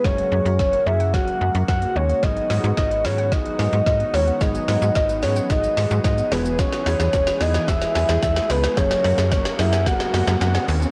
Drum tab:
HH |xx-xxx-xxx-xxx-x|xxoxxxoxxxoxxxox|xxoxxxoxxxoxxxox|xxoxxxoxxxoxxxox|
SH |----------------|----------------|xxxxxxxxxxxxxxxx|xxxxxxxxxxxxxxxx|
SD |o---o---o---o---|o-o-o-o-o-o-o-o-|o-o-o-o-o-o-o-o-|oooooooooooooooo|
BD |o---o---o---o---|o---o---o---o---|o---o---o---o---|o---o---o---o---|

HH |xxoxxxoxxxoxxxox|
SH |xxxxxxxxxxxxxxxx|
SD |oooooooooooooo--|
BD |o---o---o-------|